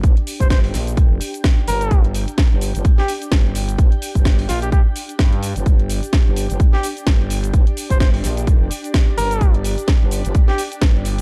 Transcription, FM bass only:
X:1
M:4/4
L:1/16
Q:"Swing 16ths" 1/4=128
K:Gm
V:1 name="FM bass" clef=bass
G,,, z2 G,,,3 B,,,2 F,,,2 z4 G,,,2 | G,,,3 z2 G,,,2 G,,, z4 G,,,4 | G,,, z2 G,,,3 B,,,2 z4 G,,3 G,,, | G,,,3 z2 G,,,2 G,,, z4 G,,,4 |
G,,, z2 G,,,3 B,,,2 F,,,2 z4 G,,,2 | G,,,3 z2 G,,,2 G,,, z4 G,,,4 |]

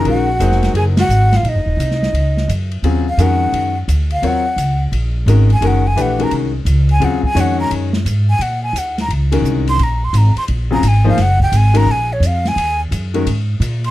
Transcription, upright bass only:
X:1
M:4/4
L:1/8
Q:"Swing" 1/4=173
K:Ebdor
V:1 name="Upright bass" clef=bass
B,,,2 F,,,2 G,,,2 A,,,2 | (3B,,, G,,, E,,, C,,2 D,,2 G,,2 | E,,2 F,,2 G,,2 =D,,2 | E,,2 D,,2 B,,,2 A,,,2 |
G,,,2 B,,,2 C,,2 D,,2 | E,,2 F,,2 G,,2 A,,2 | B,,2 E,,2 D,,2 C,,2 | B,,,2 A,,, z B,,,2 A,,,2 |
G,,,2 A,,,2 B,,,2 F,,2 | E,,2 G,,2 A,,2 B,,2 |]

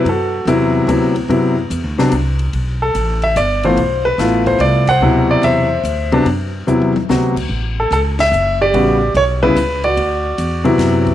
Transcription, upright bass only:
X:1
M:3/4
L:1/8
Q:"Swing" 1/4=145
K:Dmix
V:1 name="Upright bass" clef=bass
F,,2 E,,2 D,,2 | F,,2 (3E,, D,, C,, C,,2 | B,,,2 A,,,2 G,,,2 | B,,,2 A,,,2 C,,2 |
D,,2 E,,2 D,,2 | F,,2 E,,2 D,,2 | A,,,2 ^C,,2 F,,,2 | A,,,2 B,,,2 ^C,,2 |
D,,2 E,,2 F,,2 |]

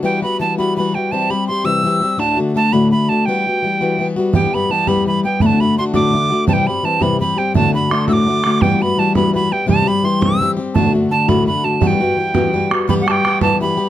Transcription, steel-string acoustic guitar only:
X:1
M:6/8
L:1/8
Q:3/8=112
K:Em
V:1 name="Steel-string acoustic guitar"
[E,G,B,F] [G,B,F] [E,G,B,F] [E,G,B,F] [E,G,B,F] [G,B,F] | [C,E,G,CG] [G,CG] [E,G,CG] [C,E,G,CG] [E,G,CG] [G,CG] | [D,,A,,D,A,DF] [D,A,DF] [D,A,DF] [D,,A,,D,A,DF] [D,A,DF] [D,A,DF] | [E,G,B,F] [G,B,F] [E,G,B,F] [E,G,B,F] [E,G,B,F] [G,B,F] |
[E,G,B,G] [G,B,G] [E,G,B,G] [E,G,B,G] [E,G,B,G] [G,B,G] | [D,,A,,D,A,DF] [D,A,DF] [D,A,DF] [D,,A,,D,A,DF] [D,A,DF] [D,A,DF] | [C,E,G,CG] [G,CG] [E,G,CG] [C,E,G,CG] [G,CG] [G,CG] | [D,,A,,D,A,DF] [D,A,DF] [D,A,DF] [D,,A,,D,A,DF] [D,A,DF] [D,A,DF] |
[E,G,B,F] [G,B,F] [E,G,B,F] [E,G,B,F] [E,G,B,F] [G,B,F] | [C,E,G,CG] [G,CG] [E,G,CG] [C,E,G,CG] [E,G,CG] [G,CG] | [D,,A,,D,A,DF] [D,A,DF] [D,A,DF] [D,,A,,D,A,DF] [D,A,DF] [D,A,DF] | [E,G,B,F] [G,B,F] [E,G,B,F] [E,G,B,F] [E,G,B,F] [G,B,F] |
[E,G,B,G] [G,B,G] [E,G,B,G] [E,G,B,G] [E,G,B,G] [G,B,G] |]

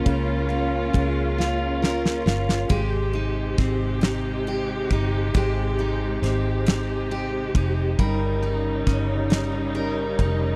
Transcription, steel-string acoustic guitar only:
X:1
M:6/8
L:1/8
Q:3/8=45
K:Ab
V:1 name="Steel-string acoustic guitar"
[D,A,FB] F A, F B F | [A,G] E C E G E | [A,G] E C E G E | [G,B] E D E B E |]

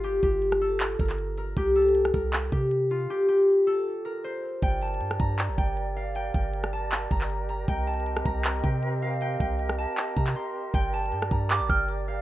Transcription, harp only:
X:1
M:4/4
L:1/8
Q:1/4=157
K:Gm
V:1 name="Harp"
G G2 A z B2 B | G A2 B z G2 F | G G2 A z B c2 | g a2 b z g2 f |
g g2 a z b2 b | g a2 b z g2 f | g g2 a z b c'2 | g a2 b z g2 f |]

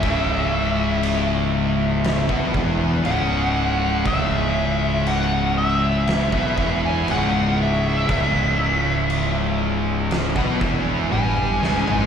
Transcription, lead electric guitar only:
X:1
M:4/4
L:1/16
Q:1/4=60
K:C#m
V:1 name="Lead electric guitar"
e8- e2 z2 f4 | e4 f2 e4- e g f2 e2- | e6 z6 g4 |]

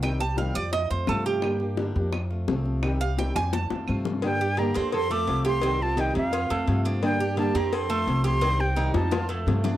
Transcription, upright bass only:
X:1
M:4/4
L:1/8
Q:1/4=172
K:Fmix
V:1 name="Upright bass" clef=bass
C,,3 F,,2 F,, G,,2- | G,,3 F,,3 C,,2- | C,,3 F,,2 F,, G,,2- | G,,3 F,,3 C,,2- |
C,,3 F,,2 F,, G,,2- | G,,3 F,,3 C,,2- | C,,3 F,,3 G,,2 |]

